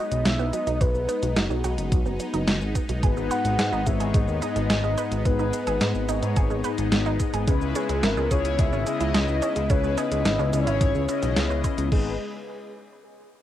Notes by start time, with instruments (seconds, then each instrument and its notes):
Already playing: analog synth pad G#3 B3 D#4, soft synth lead D#5
0.11 analog synth bass B1, closed hi-hat, cabasa
0.25 analog synth bass B1, synth arpeggio sound F#3, soft synth lead E5, snare, closed hi-hat, cabasa
0.39 analog synth bass B1, synth arpeggio sound B3, cabasa
0.53 synth arpeggio sound F#3, soft synth lead D#5, closed hi-hat, cabasa
0.67 analog synth bass B1, synth arpeggio sound D#4, closed hi-hat, cabasa
0.81 analog synth bass B1, synth arpeggio sound F#3, soft synth lead B4, kick, closed hi-hat, cabasa
0.95 analog synth bass B1, cabasa
1.09 synth arpeggio sound B3, closed hi-hat, cabasa
1.23 analog synth bass B1, synth arpeggio sound F#3, closed hi-hat, cabasa
1.36 analog synth bass F#1, synth arpeggio sound D#4, soft synth lead F#4, snare, closed hi-hat, cabasa
1.50 analog synth bass B1, synth arpeggio sound F#3, cabasa
1.64 analog synth bass B1, synth arpeggio sound F#4, closed hi-hat, cabasa
1.78 analog synth bass F#1, closed hi-hat, cabasa
1.92 analog synth bass B1, synth arpeggio sound F#3, kick, closed hi-hat, cabasa
2.06 analog synth bass F#1, synth arpeggio sound B3, cabasa
2.20 synth arpeggio sound F#3, closed hi-hat, cabasa
2.34 analog synth bass F#1, synth arpeggio sound D#4, closed hi-hat, cabasa
2.48 analog synth bass F#1, synth arpeggio sound F#3, snare, closed hi-hat, cabasa
2.61 analog synth bass G#1, cabasa
2.75 synth arpeggio sound B3, kick, closed hi-hat, cabasa
2.89 analog synth bass B1, synth arpeggio sound F#3, closed hi-hat, cabasa
3.03 analog synth bass G#1, analog polysynth G#2 B3 D#4 G#4 B4, synth arpeggio sound G#4, kick, closed hi-hat, cabasa
3.17 analog synth bass G#1, synth arpeggio sound G#3, cabasa
3.31 synth arpeggio sound B4, soft synth lead F#5, closed hi-hat, cabasa
3.45 analog synth bass G#1, closed hi-hat, cabasa
3.59 analog synth bass G#2, synth arpeggio sound G#3, snare, closed hi-hat, cabasa
3.72 analog synth bass G#1, synth arpeggio sound D#4, cabasa
3.86 analog synth bass G#1, analog polysynth G#2 B3 D#4 G#4 C#5, synth arpeggio sound G#3, soft synth lead E5, kick, closed hi-hat, cabasa
4.00 analog synth bass G#1, synth arpeggio sound G#4, closed hi-hat, cabasa
4.14 analog synth bass G#1, synth arpeggio sound G#3, soft synth lead D#5, kick, closed hi-hat, cabasa
4.28 analog synth bass D#2, cabasa
4.42 analog polysynth G#2 B3 D#4 G#4 D#5, synth arpeggio sound D#4, closed hi-hat, cabasa
4.56 analog synth bass G#1, synth arpeggio sound G#3, closed hi-hat, cabasa
4.70 analog synth bass G#1, synth arpeggio sound G#4, soft synth lead D#5, snare, closed hi-hat, cabasa
4.84 analog synth bass G#1, synth arpeggio sound G#3, cabasa
4.97 synth arpeggio sound B4, closed hi-hat, cabasa
5.11 analog synth bass G#1, closed hi-hat, cabasa
5.25 analog synth bass G#1, analog polysynth G#2 B3 D#4 G#4 B4, synth arpeggio sound G#3, soft synth lead B4, kick, closed hi-hat, cabasa
5.39 analog synth bass G#1, synth arpeggio sound D#4, cabasa
5.53 synth arpeggio sound G#3, closed hi-hat, cabasa
5.67 analog synth bass G#1, synth arpeggio sound G#4, closed hi-hat, cabasa
5.81 analog synth bass G#2, synth arpeggio sound G#3, snare, closed hi-hat, cabasa
5.95 analog synth bass G#1, cabasa
6.09 analog synth bass G#1, analog polysynth G#2 B3 D#4 G#4 C#5, synth arpeggio sound D#4, closed hi-hat, cabasa
6.22 analog synth bass G#2, synth arpeggio sound G#3, closed hi-hat, cabasa
6.36 analog synth bass G#1, synth arpeggio sound G#4, kick, closed hi-hat, cabasa
6.50 analog synth bass G#1, synth arpeggio sound G#3, cabasa
6.64 analog polysynth G#2 B3 D#4 G#4 D#5, synth arpeggio sound B4, closed hi-hat, cabasa
6.78 analog synth bass G#1, closed hi-hat, cabasa
6.92 analog synth bass G#1, synth arpeggio sound G#3, snare, closed hi-hat, cabasa
7.06 analog synth bass G#1, synth arpeggio sound D#4, cabasa
7.20 synth arpeggio sound G#3, kick, closed hi-hat, cabasa
7.34 analog synth bass G#1, synth arpeggio sound G#4, closed hi-hat, cabasa
7.48 analog synth bass C#2, analog synth pad C#3 E4, analog polysynth C#3 C#4 E4 G#4 B4, synth arpeggio sound G#3, kick, closed hi-hat, cabasa
7.62 analog synth bass C#2, cabasa
7.75 synth arpeggio sound C#4, soft synth lead G#4, closed hi-hat, cabasa
7.89 analog synth bass C#2, synth arpeggio sound G#3, closed hi-hat, cabasa
8.03 analog synth bass G#1, synth arpeggio sound E4, soft synth lead A#4, snare, closed hi-hat, cabasa
8.17 analog synth bass C#2, synth arpeggio sound G#3, cabasa
8.31 analog synth bass C#2, analog polysynth C#3 C#4 E4 G#4 C#5, synth arpeggio sound G#4, soft synth lead C#5, kick, closed hi-hat, cabasa
8.45 analog synth bass C#2, closed hi-hat, cabasa
8.59 analog synth bass C#2, synth arpeggio sound G#3, soft synth lead E5, kick, closed hi-hat, cabasa
8.73 analog synth bass G#1, synth arpeggio sound C#4, cabasa
8.87 analog polysynth C#3 C#4 E4 G#4 D#5, synth arpeggio sound G#3, closed hi-hat, cabasa
9.00 analog synth bass C#2, synth arpeggio sound E4, closed hi-hat, cabasa
9.14 analog synth bass C#2, synth arpeggio sound G#3, soft synth lead D#5, snare, closed hi-hat, cabasa
9.28 analog synth bass C#2, cabasa
9.42 synth arpeggio sound C#4, closed hi-hat, cabasa
9.56 analog synth bass C#2, synth arpeggio sound G#3, closed hi-hat, cabasa
9.70 analog synth bass C#2, analog polysynth C#3 C#4 E4 G#4 B4, synth arpeggio sound E4, soft synth lead C#5, kick, closed hi-hat, cabasa
9.84 analog synth bass C#2, synth arpeggio sound G#3, cabasa
9.98 synth arpeggio sound G#4, soft synth lead D#5, closed hi-hat, cabasa
10.11 analog synth bass C#2, closed hi-hat, cabasa
10.25 analog synth bass G#1, synth arpeggio sound G#3, snare, closed hi-hat, cabasa
10.39 analog synth bass C#2, synth arpeggio sound C#4, cabasa
10.53 analog synth bass C#2, analog polysynth C#3 C#4 E4 G#4 C#5, synth arpeggio sound G#3, soft synth lead C#5, closed hi-hat, cabasa
10.67 analog synth bass G#1, synth arpeggio sound E4, closed hi-hat, cabasa
10.81 analog synth bass G#1, synth arpeggio sound G#3, kick, closed hi-hat, cabasa
10.95 analog synth bass C#2, cabasa
11.09 analog polysynth C#3 C#4 E4 G#4 D#5, synth arpeggio sound E4, closed hi-hat, cabasa
11.23 analog synth bass B1, synth arpeggio sound B3, closed hi-hat, cabasa
11.36 analog synth bass C#2, synth arpeggio sound B3, snare, closed hi-hat, cabasa
11.50 analog synth bass C#2, synth arpeggio sound B4, cabasa
11.64 synth arpeggio sound B4, kick, closed hi-hat, cabasa
11.78 analog synth bass C#2, closed hi-hat, cabasa
11.92 analog synth bass G#1, analog synth pad G#3 G#4 B4 D#5, synth arpeggio sound G#3, analog polysynth B3 D#4 G#4 B4, soft synth lead G#4, kick, crash